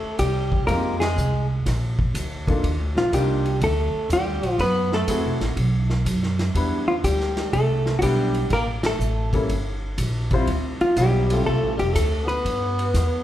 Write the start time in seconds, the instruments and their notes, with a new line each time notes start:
Already playing: tenor saxophone A3, hollow-body jazz guitar A4
0.03 muted upright bass stroke
0.19 upright bass C2, tenor saxophone G3, hollow-body jazz guitar G4, kick, hi-hat pedal, ride
0.52 kick
0.67 upright bass F2, grand piano G#3 C4 D#4 F4 G4, tenor saxophone A#3, hollow-body jazz guitar A#4, kick, ride
1.00 tenor saxophone G#3, hollow-body jazz guitar G#4, snare, ride
1.16 upright bass C2, hi-hat pedal
1.66 upright bass A#1, kick, snare, ride
1.99 kick
2.14 upright bass D2, kick, hi-hat pedal, ride
2.48 grand piano A#3 D4 D#4 F4 A4, kick, ride
2.63 upright bass D#2, kick, ride
2.79 upright bass D2
2.95 upright bass A#1, tenor saxophone F3, hollow-body jazz guitar F4, snare
3.12 upright bass C2, tenor saxophone G3, grand piano A#3 D4 D#4 F4 G4, hollow-body jazz guitar G4, kick, hi-hat pedal, ride
3.45 ride
3.61 upright bass D2, tenor saxophone A3, hollow-body jazz guitar A4, kick, ride
3.93 muted upright bass stroke
4.09 upright bass D#2, tenor saxophone G3, hollow-body jazz guitar G4, kick, hi-hat pedal, ride
4.26 upright bass D2
4.42 upright bass A#1, ride
4.59 upright bass F#2, tenor saxophone B3, hollow-body jazz guitar B4, kick, ride
4.92 tenor saxophone A3, hollow-body jazz guitar A4, snare
5.08 upright bass E2, grand piano A3 C4 E4 F#4 G#4, kick, hi-hat pedal, ride
5.23 upright bass C2
5.40 upright bass A1, snare, ride
5.56 upright bass B1, kick, ride
5.90 snare
6.05 upright bass F#2, kick, hi-hat pedal, ride
6.23 snare
6.39 snare, ride
6.54 upright bass E2, grand piano G3 B3 D4 E4 B4, kick, ride
6.88 tenor saxophone F3, hollow-body jazz guitar F4
7.04 upright bass D2, tenor saxophone G3, hollow-body jazz guitar G4, kick, hi-hat pedal, ride
7.20 snare
7.37 snare, ride
7.52 upright bass C2, tenor saxophone A3, hollow-body jazz guitar A4, kick, ride
7.86 snare
7.99 upright bass B1, tenor saxophone F#3, grand piano G3 B3 D4, hollow-body jazz guitar F#4, kick, hi-hat pedal, ride
8.03 tenor saxophone G3, grand piano E4 D5, hollow-body jazz guitar G4
8.34 ride
8.50 upright bass A1, tenor saxophone A#3, hollow-body jazz guitar A#4, kick, ride
8.83 tenor saxophone A3, hollow-body jazz guitar A4, snare, ride
8.99 upright bass A1, hi-hat pedal
9.33 grand piano G3 A#3 C#4 E4 A4, kick, ride
9.49 upright bass G1, kick, ride
9.98 upright bass A#1, kick, hi-hat pedal, ride
10.31 grand piano G3 C4 E4 F4 C5, kick, ride
10.47 upright bass D2, kick, ride
10.81 tenor saxophone F3, hollow-body jazz guitar F4, muted upright bass stroke, ride
10.96 upright bass B1, grand piano F#3 B3 D#4 E4 G#4, tenor saxophone G3, hollow-body jazz guitar G4, kick, hi-hat pedal, ride
11.30 grand piano G3 C4 E4 F4 A4, ride
11.45 upright bass C2, tenor saxophone A3, hollow-body jazz guitar A4, kick
11.63 upright bass A1
11.77 upright bass F1, tenor saxophone G3, hollow-body jazz guitar G4, ride
11.92 upright bass D2, tenor saxophone A3, hollow-body jazz guitar A4, kick, hi-hat pedal, ride
12.25 tenor saxophone B3, hollow-body jazz guitar B4
12.29 ride
12.45 upright bass G2, kick, ride
12.79 ride
12.94 upright bass E2, kick, snare, hi-hat pedal, ride